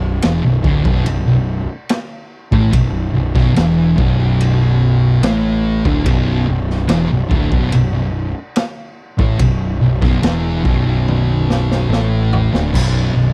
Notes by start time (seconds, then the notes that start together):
Already playing: B0 B1
0.22 E1 E2 E3, snare, ride bell
0.45 B0 B1
0.64 D1 D2 D3, kick
0.85 B0 B1 B2, kick
1.06 B0 B1, ride bell
1.27 B0 B1
1.89 snare, ride bell
2.52 A1 A2 A3, kick
2.73 B0 B1, kick, ride bell
3.15 B0 B1
3.35 B0 B1 B2, kick, snare
3.56 E1 E2 E3, snare, ride bell
3.98 B0 B1 B2, kick
4.40 ride bell
5.22 A1 A2 A3, snare, ride bell
5.85 D1 D2 D3, kick
6.06 B0 B1 B2, kick, ride bell
6.48 B0 B1
6.70 snare
6.89 E1 E2 E3, snare, ride bell
7.09 B0 B1
7.31 D1 D2 D3, kick
7.52 B0 B1 B2, kick
7.72 B0 B1, ride bell
7.94 B0 B1
8.56 snare, ride bell
9.18 A1 A2 A3, kick
9.39 B0 B1, kick, ride bell
9.81 B0 B1
10.02 B0 B1 B2, kick, snare
10.23 E1 E2 E3, snare, ride bell
10.65 B0 B1 B2, kick
11.08 high tom
11.50 snare
11.71 snare
11.89 A1 A2 A3, snare
12.33 floor tom
12.52 D1 D2 D3, snare
12.73 B0 B1 B2, kick, crash, splash
13.13 B0 B1